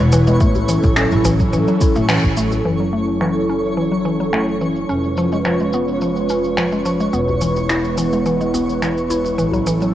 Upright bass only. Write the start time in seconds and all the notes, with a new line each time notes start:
0.00 E1
0.41 A1
0.84 A1
1.12 A1
1.53 A2
1.95 A1
2.24 A1
2.65 F#1
4.89 F1
7.14 E1
9.39 A1